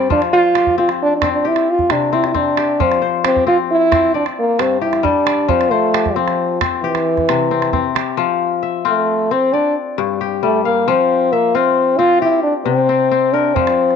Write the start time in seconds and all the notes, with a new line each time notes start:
Already playing: G2 G3 C4 G4 D5
0.10 F3 D4, calabash thump
0.22 calabash click
0.33 F4 C5
0.44 calabash click
0.55 G4, calabash click
0.67 calabash thump
0.78 C4 F4, calabash click
0.89 calabash click
1.02 D4
1.16 D4
1.22 C4, calabash thump, calabash click
1.32 D4
1.45 E4 G4
1.56 calabash click
1.70 F4
1.79 calabash thump
1.90 C3 D4, calabash click
2.12 C4 E4, calabash click
2.24 calabash click
2.28 E4
2.34 C4 D4, calabash thump, calabash click
2.57 G4, calabash click
2.80 F3 C4, calabash thump
2.92 calabash click
3.02 C5
3.24 C4 G4, calabash click
3.36 calabash thump
3.47 C4 F4, calabash click
3.71 E4
3.92 C4, calabash thump, calabash click
4.14 D4 D5
4.26 calabash click
4.39 A#3
4.59 G2 C4, calabash click
4.81 E4 G4, calabash click
4.93 calabash click
5.03 G3 D4, calabash thump, calabash click
5.26 D5, calabash click
5.48 F3 C4, calabash thump
5.61 calabash click
5.71 A3 C5, calabash click
5.94 G4, calabash click
6.06 calabash thump, calabash click
6.16 F3 C4
6.28 calabash click
6.61 C4, calabash thump, calabash click
6.83 E3 G4
6.95 calabash click
7.17 calabash thump, calabash click
7.29 C3, calabash click
7.51 C4
7.62 calabash click
7.73 C4, calabash thump
7.95 G4, calabash click
8.17 F3
8.63 E5
8.85 A3 C4 F4
9.31 C4
9.53 D4 D5
9.98 G2
10.21 G4
10.43 G3 A3
10.64 A#3 F5
10.88 F3 C4
11.33 A#3 E5
11.55 C4 F4
11.98 C4 F4
12.21 E4 G4
12.43 D4
12.65 C3 C4
12.89 C4
13.11 C4
13.33 D4 A#4
13.55 F3 C4, calabash thump
13.67 calabash click
13.91 calabash click